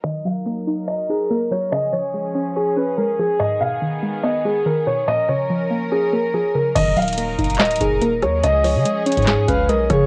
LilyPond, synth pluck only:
\new Staff \with { instrumentName = "Synth pluck" } { \clef bass \time 4/4 \key ees \minor \tempo 4 = 143 ees8 ges8 bes8 ees'8 ees''8 ees'8 bes8 ges8 | des8 f8 aes8 des'8 des''8 des'8 aes8 f8 | aes,8 ces8 ees8 aes8 ces'8 aes8 ees8 ces8 | bes,8 des8 f8 bes8 des'8 bes8 f8 des8 |
ees8 ges8 bes8 ees'8 ees''8 ees'8 bes8 ges8 | des8 f8 aes8 des'8 des''8 des'8 aes8 f8 | }